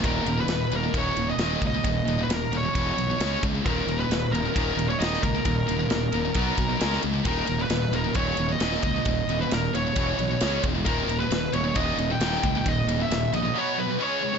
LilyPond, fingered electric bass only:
\new Staff \with { instrumentName = "Fingered electric bass" } { \clef bass \time 4/4 \tempo 4 = 133 ees,,8 ees,,8 ees,,8 ees,,8 ees,,8 ees,,8 ees,,8 des,8 | ees,,8 ees,,8 ees,,8 ees,,8 e,,8 b,,8 des,8 des,8 | ees,,8 ees,,8 ees,,8 ees,,8 ees,,8 ees,,8 ees,,8 des,8 | ees,,8 ees,,8 ees,,8 ees,,8 b,,8 b,,8 des,8 des,8 |
ees,,8 ees,,8 ees,,8 ees,,8 ees,,8 ees,,8 ees,,8 des,8 | ees,,8 ees,,8 ees,,8 ees,,8 e,,8 b,,8 des,8 fes,,8 | ees,,8 ees,,8 ees,,8 ees,,8 ees,,8 ees,,8 ees,,8 des,8 | ees,,8 ees,,8 ees,,8 bes,,8 r2 | }